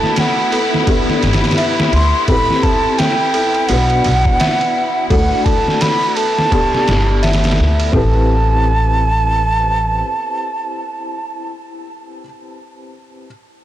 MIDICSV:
0, 0, Header, 1, 8, 480
1, 0, Start_track
1, 0, Tempo, 705882
1, 1554, Time_signature, 4, 2, 24, 8
1, 9277, End_track
2, 0, Start_track
2, 0, Title_t, "Flute"
2, 0, Program_c, 0, 73
2, 0, Note_on_c, 0, 81, 113
2, 134, Note_on_c, 0, 78, 84
2, 145, Note_off_c, 0, 81, 0
2, 604, Note_off_c, 0, 78, 0
2, 1321, Note_on_c, 0, 84, 111
2, 1541, Note_off_c, 0, 84, 0
2, 1551, Note_on_c, 0, 83, 111
2, 1790, Note_on_c, 0, 81, 104
2, 1800, Note_off_c, 0, 83, 0
2, 2028, Note_on_c, 0, 79, 99
2, 2038, Note_off_c, 0, 81, 0
2, 2502, Note_on_c, 0, 78, 114
2, 2512, Note_off_c, 0, 79, 0
2, 3461, Note_off_c, 0, 78, 0
2, 3465, Note_on_c, 0, 78, 96
2, 3704, Note_on_c, 0, 81, 101
2, 3714, Note_off_c, 0, 78, 0
2, 3954, Note_on_c, 0, 83, 106
2, 3964, Note_off_c, 0, 81, 0
2, 4188, Note_on_c, 0, 81, 109
2, 4198, Note_off_c, 0, 83, 0
2, 5151, Note_off_c, 0, 81, 0
2, 5396, Note_on_c, 0, 81, 109
2, 7832, Note_off_c, 0, 81, 0
2, 9277, End_track
3, 0, Start_track
3, 0, Title_t, "Celesta"
3, 0, Program_c, 1, 8
3, 0, Control_c, 1, 64, 127
3, 0, Note_on_c, 1, 69, 70
3, 335, Note_off_c, 1, 69, 0
3, 356, Note_on_c, 1, 69, 73
3, 585, Note_off_c, 1, 69, 0
3, 597, Note_on_c, 1, 67, 81
3, 604, Control_c, 1, 64, 0
3, 739, Control_c, 1, 64, 127
3, 1056, Note_off_c, 1, 67, 0
3, 1074, Note_on_c, 1, 76, 104
3, 1304, Note_off_c, 1, 76, 0
3, 1550, Note_on_c, 1, 69, 100
3, 1563, Control_c, 1, 64, 0
3, 1671, Control_c, 1, 64, 127
3, 1773, Note_off_c, 1, 69, 0
3, 1795, Note_on_c, 1, 69, 75
3, 2255, Note_off_c, 1, 69, 0
3, 2270, Note_on_c, 1, 69, 80
3, 2502, Note_off_c, 1, 69, 0
3, 2513, Note_on_c, 1, 66, 84
3, 2523, Control_c, 1, 64, 0
3, 2631, Control_c, 1, 64, 127
3, 2974, Note_off_c, 1, 66, 0
3, 2994, Note_on_c, 1, 76, 100
3, 3224, Note_off_c, 1, 76, 0
3, 3471, Note_on_c, 1, 69, 102
3, 3484, Control_c, 1, 64, 0
3, 3616, Control_c, 1, 64, 127
3, 3693, Note_off_c, 1, 69, 0
3, 3716, Note_on_c, 1, 69, 77
3, 4176, Note_off_c, 1, 69, 0
3, 4195, Note_on_c, 1, 69, 71
3, 4425, Note_off_c, 1, 69, 0
3, 4436, Note_on_c, 1, 67, 78
3, 4442, Control_c, 1, 64, 0
3, 4575, Control_c, 1, 64, 127
3, 4895, Note_off_c, 1, 67, 0
3, 4914, Note_on_c, 1, 76, 101
3, 5144, Note_off_c, 1, 76, 0
3, 5394, Note_on_c, 1, 69, 95
3, 5404, Control_c, 1, 64, 0
3, 5540, Control_c, 1, 64, 127
3, 5617, Note_off_c, 1, 69, 0
3, 9024, Control_c, 1, 64, 0
3, 9277, End_track
4, 0, Start_track
4, 0, Title_t, "Felt piano"
4, 0, Program_c, 2, 0
4, 0, Control_c, 2, 64, 127
4, 0, Note_on_c, 2, 57, 79
4, 0, Note_on_c, 2, 62, 74
4, 0, Note_on_c, 2, 66, 77
4, 0, Note_on_c, 2, 69, 89
4, 553, Note_off_c, 2, 57, 0
4, 556, Note_off_c, 2, 62, 0
4, 559, Note_off_c, 2, 66, 0
4, 564, Note_off_c, 2, 69, 0
4, 589, Note_on_c, 2, 59, 77
4, 596, Note_on_c, 2, 62, 71
4, 602, Note_on_c, 2, 67, 77
4, 605, Control_c, 2, 64, 0
4, 609, Note_on_c, 2, 69, 87
4, 716, Control_c, 2, 64, 127
4, 1512, Note_off_c, 2, 59, 0
4, 1516, Note_off_c, 2, 62, 0
4, 1519, Note_off_c, 2, 67, 0
4, 1523, Note_off_c, 2, 69, 0
4, 1552, Note_on_c, 2, 60, 82
4, 1559, Note_on_c, 2, 64, 73
4, 1561, Control_c, 2, 64, 0
4, 1568, Note_on_c, 2, 67, 74
4, 1575, Note_on_c, 2, 71, 85
4, 1681, Control_c, 2, 64, 127
4, 2474, Note_off_c, 2, 60, 0
4, 2478, Note_off_c, 2, 64, 0
4, 2482, Note_off_c, 2, 67, 0
4, 2486, Note_off_c, 2, 71, 0
4, 2509, Note_on_c, 2, 59, 82
4, 2519, Note_on_c, 2, 62, 78
4, 2524, Control_c, 2, 64, 0
4, 2526, Note_on_c, 2, 66, 70
4, 2532, Note_on_c, 2, 71, 89
4, 2626, Control_c, 2, 64, 127
4, 3433, Note_off_c, 2, 59, 0
4, 3438, Note_off_c, 2, 62, 0
4, 3441, Note_off_c, 2, 66, 0
4, 3444, Note_off_c, 2, 71, 0
4, 3468, Note_on_c, 2, 57, 75
4, 3475, Note_on_c, 2, 62, 76
4, 3481, Note_on_c, 2, 66, 70
4, 3483, Control_c, 2, 64, 0
4, 3489, Note_on_c, 2, 69, 88
4, 3600, Control_c, 2, 64, 127
4, 4392, Note_off_c, 2, 57, 0
4, 4396, Note_off_c, 2, 62, 0
4, 4398, Note_off_c, 2, 66, 0
4, 4402, Note_off_c, 2, 69, 0
4, 4432, Note_on_c, 2, 59, 83
4, 4440, Note_on_c, 2, 62, 73
4, 4444, Control_c, 2, 64, 0
4, 4446, Note_on_c, 2, 67, 73
4, 4454, Note_on_c, 2, 69, 92
4, 4573, Control_c, 2, 64, 127
4, 5354, Note_off_c, 2, 59, 0
4, 5358, Note_off_c, 2, 62, 0
4, 5361, Note_off_c, 2, 67, 0
4, 5365, Note_off_c, 2, 69, 0
4, 5386, Note_on_c, 2, 60, 81
4, 5397, Note_on_c, 2, 64, 81
4, 5403, Control_c, 2, 64, 0
4, 5408, Note_on_c, 2, 67, 76
4, 5419, Note_on_c, 2, 71, 91
4, 5511, Control_c, 2, 64, 127
4, 8303, Note_off_c, 2, 60, 0
4, 8308, Note_off_c, 2, 64, 0
4, 8314, Note_off_c, 2, 67, 0
4, 8319, Note_off_c, 2, 71, 0
4, 9023, Control_c, 2, 64, 0
4, 9277, End_track
5, 0, Start_track
5, 0, Title_t, "Violin section"
5, 0, Program_c, 3, 48
5, 0, Note_on_c, 3, 64, 86
5, 5403, Note_off_c, 3, 64, 0
5, 9277, End_track
6, 0, Start_track
6, 0, Title_t, "Synth texture"
6, 0, Program_c, 4, 99
6, 0, Note_on_c, 4, 59, 87
6, 5404, Note_off_c, 4, 59, 0
6, 9277, End_track
7, 0, Start_track
7, 0, Title_t, "Upright bass"
7, 0, Program_c, 5, 32
7, 838, Note_on_c, 5, 31, 98
7, 961, Note_off_c, 5, 31, 0
7, 1312, Note_on_c, 5, 38, 96
7, 1438, Note_off_c, 5, 38, 0
7, 1552, Note_on_c, 5, 33, 95
7, 1678, Note_off_c, 5, 33, 0
7, 2514, Note_on_c, 5, 35, 87
7, 2731, Note_off_c, 5, 35, 0
7, 2759, Note_on_c, 5, 35, 102
7, 2882, Note_off_c, 5, 35, 0
7, 3473, Note_on_c, 5, 38, 101
7, 3599, Note_off_c, 5, 38, 0
7, 4682, Note_on_c, 5, 31, 81
7, 5139, Note_off_c, 5, 31, 0
7, 5167, Note_on_c, 5, 38, 101
7, 5377, Note_off_c, 5, 38, 0
7, 5398, Note_on_c, 5, 33, 97
7, 6809, Note_off_c, 5, 33, 0
7, 9277, End_track
8, 0, Start_track
8, 0, Title_t, "Drums"
8, 23, Note_on_c, 9, 38, 39
8, 91, Note_off_c, 9, 38, 0
8, 111, Note_on_c, 9, 51, 90
8, 119, Note_on_c, 9, 38, 117
8, 179, Note_off_c, 9, 51, 0
8, 187, Note_off_c, 9, 38, 0
8, 356, Note_on_c, 9, 51, 69
8, 424, Note_off_c, 9, 51, 0
8, 506, Note_on_c, 9, 38, 57
8, 574, Note_off_c, 9, 38, 0
8, 593, Note_on_c, 9, 51, 90
8, 594, Note_on_c, 9, 36, 112
8, 661, Note_off_c, 9, 51, 0
8, 662, Note_off_c, 9, 36, 0
8, 746, Note_on_c, 9, 38, 49
8, 814, Note_off_c, 9, 38, 0
8, 833, Note_on_c, 9, 51, 66
8, 841, Note_on_c, 9, 38, 93
8, 901, Note_off_c, 9, 51, 0
8, 906, Note_on_c, 9, 51, 71
8, 909, Note_off_c, 9, 38, 0
8, 914, Note_on_c, 9, 38, 93
8, 974, Note_off_c, 9, 51, 0
8, 979, Note_on_c, 9, 51, 65
8, 982, Note_off_c, 9, 38, 0
8, 987, Note_on_c, 9, 38, 90
8, 1028, Note_off_c, 9, 51, 0
8, 1028, Note_on_c, 9, 51, 67
8, 1036, Note_off_c, 9, 38, 0
8, 1036, Note_on_c, 9, 38, 86
8, 1073, Note_off_c, 9, 51, 0
8, 1073, Note_on_c, 9, 51, 92
8, 1104, Note_off_c, 9, 38, 0
8, 1141, Note_off_c, 9, 51, 0
8, 1222, Note_on_c, 9, 38, 120
8, 1290, Note_off_c, 9, 38, 0
8, 1311, Note_on_c, 9, 51, 71
8, 1379, Note_off_c, 9, 51, 0
8, 1550, Note_on_c, 9, 51, 82
8, 1551, Note_on_c, 9, 36, 108
8, 1618, Note_off_c, 9, 51, 0
8, 1619, Note_off_c, 9, 36, 0
8, 1703, Note_on_c, 9, 38, 40
8, 1771, Note_off_c, 9, 38, 0
8, 1791, Note_on_c, 9, 36, 93
8, 1791, Note_on_c, 9, 51, 67
8, 1859, Note_off_c, 9, 36, 0
8, 1859, Note_off_c, 9, 51, 0
8, 2030, Note_on_c, 9, 51, 88
8, 2039, Note_on_c, 9, 38, 118
8, 2098, Note_off_c, 9, 51, 0
8, 2107, Note_off_c, 9, 38, 0
8, 2271, Note_on_c, 9, 51, 69
8, 2339, Note_off_c, 9, 51, 0
8, 2410, Note_on_c, 9, 51, 44
8, 2478, Note_off_c, 9, 51, 0
8, 2506, Note_on_c, 9, 51, 86
8, 2574, Note_off_c, 9, 51, 0
8, 2650, Note_on_c, 9, 51, 45
8, 2718, Note_off_c, 9, 51, 0
8, 2750, Note_on_c, 9, 51, 68
8, 2818, Note_off_c, 9, 51, 0
8, 2893, Note_on_c, 9, 36, 86
8, 2961, Note_off_c, 9, 36, 0
8, 2991, Note_on_c, 9, 51, 94
8, 2999, Note_on_c, 9, 38, 121
8, 3059, Note_off_c, 9, 51, 0
8, 3067, Note_off_c, 9, 38, 0
8, 3135, Note_on_c, 9, 51, 45
8, 3203, Note_off_c, 9, 51, 0
8, 3471, Note_on_c, 9, 36, 110
8, 3471, Note_on_c, 9, 51, 81
8, 3539, Note_off_c, 9, 36, 0
8, 3539, Note_off_c, 9, 51, 0
8, 3711, Note_on_c, 9, 36, 92
8, 3712, Note_on_c, 9, 51, 71
8, 3779, Note_off_c, 9, 36, 0
8, 3780, Note_off_c, 9, 51, 0
8, 3863, Note_on_c, 9, 38, 41
8, 3931, Note_off_c, 9, 38, 0
8, 3950, Note_on_c, 9, 51, 92
8, 3958, Note_on_c, 9, 38, 113
8, 4018, Note_off_c, 9, 51, 0
8, 4026, Note_off_c, 9, 38, 0
8, 4192, Note_on_c, 9, 51, 68
8, 4260, Note_off_c, 9, 51, 0
8, 4342, Note_on_c, 9, 38, 58
8, 4410, Note_off_c, 9, 38, 0
8, 4433, Note_on_c, 9, 36, 109
8, 4435, Note_on_c, 9, 51, 85
8, 4501, Note_off_c, 9, 36, 0
8, 4503, Note_off_c, 9, 51, 0
8, 4587, Note_on_c, 9, 38, 45
8, 4655, Note_off_c, 9, 38, 0
8, 4676, Note_on_c, 9, 51, 75
8, 4684, Note_on_c, 9, 38, 110
8, 4744, Note_off_c, 9, 51, 0
8, 4752, Note_off_c, 9, 38, 0
8, 4916, Note_on_c, 9, 51, 71
8, 4924, Note_on_c, 9, 38, 96
8, 4984, Note_off_c, 9, 51, 0
8, 4986, Note_on_c, 9, 51, 77
8, 4992, Note_off_c, 9, 38, 0
8, 4995, Note_on_c, 9, 38, 99
8, 5054, Note_off_c, 9, 51, 0
8, 5059, Note_on_c, 9, 51, 66
8, 5063, Note_off_c, 9, 38, 0
8, 5067, Note_on_c, 9, 38, 83
8, 5109, Note_off_c, 9, 51, 0
8, 5109, Note_on_c, 9, 51, 62
8, 5117, Note_off_c, 9, 38, 0
8, 5117, Note_on_c, 9, 38, 80
8, 5177, Note_off_c, 9, 51, 0
8, 5185, Note_off_c, 9, 38, 0
8, 5301, Note_on_c, 9, 51, 63
8, 5369, Note_off_c, 9, 51, 0
8, 5395, Note_on_c, 9, 36, 102
8, 5463, Note_off_c, 9, 36, 0
8, 9277, End_track
0, 0, End_of_file